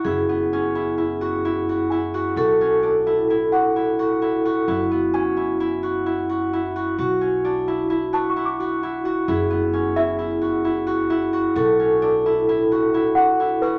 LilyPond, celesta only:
\new Staff \with { instrumentName = "Celesta" } { \time 5/4 \key fis \minor \tempo 4 = 130 r1 gis''4~ | gis''8 r2 fis''2~ fis''8~ | fis''8 r8 gis''2. r4 | r2 r8 a''16 cis'''16 d'''2~ |
d'''4 r8 e''2. r8 | r2. r8 fis''4 b'8 | }